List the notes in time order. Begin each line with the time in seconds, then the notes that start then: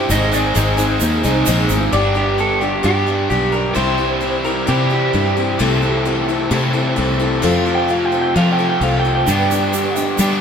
Already playing: G2 D4 E4 C5
0.09 G#1 G#2 D#3 G#3 C4 D#4 G#4 C5 D#5, shaker
0.32 G#3 C4 D#4 G#4 D5, shaker
0.54 G#1 G#2 D#3 G#3 C4 D#4 G#4 C5, shaker
0.77 G#3 C4 D#4 G#4, shaker
1.00 D#2 G#3 C4 D#4 G#4, shaker
1.23 C2 G#3 C4 D#4 G#4, shaker
1.46 A#1 G#2 D#3 G#3 C4 D#4 G#4, shaker
1.64 G3 A3
1.68 G#1 G#3 B3 C4 D#4 G#4, shaker
1.74 D4 E4
1.80 F4 G4
1.85 A4 B4
1.91 G1 G2 D3 G3 B3 D4 G4 B4 C5 D5
2.15 G3 B3 D4 G4
2.38 G3 B3 D4 G4 A4
2.61 G3 B3 D4 G4
2.83 G2 D3 G3 B3 D4 G4
3.06 G3 B3 D4 G4
3.30 B1 G3 B3 D4 G4
3.52 G3 B3 D4 G4 A#4
3.74 C2 C3 E3 G3 C4 E4 G4 C5
3.98 C4 E4 G4
4.21 G3 C4 E4 G4
4.44 C4 E4 G4 A#4
4.67 C3 E3 G3 C4 E4 G4
4.90 C4 E4 G4
5.13 G2 G3 C4 E4 G4
5.37 C4 E4 G4
5.59 C2 C3 E3 A3 C4 E4 A4 C5
5.82 C4 E4 A4
6.05 A3 C4 E4 A4
6.28 C4 E4 A4
6.51 C3 E3 A3 C4 E4 A4
6.73 C4 E4 A4
6.96 C2 A3 C4 E4 A4
7.19 C4 E4 A4
7.41 F2 C3 F3 A3 C4 F4 A4 C5
7.66 C4 F4 A4
7.75 G5
7.88 F3 C4 F4 A4 F5
8.05 G5
8.12 C4 F4 A4
8.21 G5
8.34 F2 C3 F3 A3 C4 F4 A4 F5
8.53 G5
8.59 C4 F4 A4
8.69 G5
8.81 C2 F3 C4 F4 A4 F5
9.00 G5
9.05 C4 F4 A4
9.15 G5
9.26 G2 D3 G3 B3 D4 G4 B4, shaker
9.51 G3 B3 D4 G4, shaker
9.73 G3 B3 D4 G4, shaker
9.96 G3 B3 D4 G4, shaker
10.18 G2 D3 G3 B3 D4 G4, shaker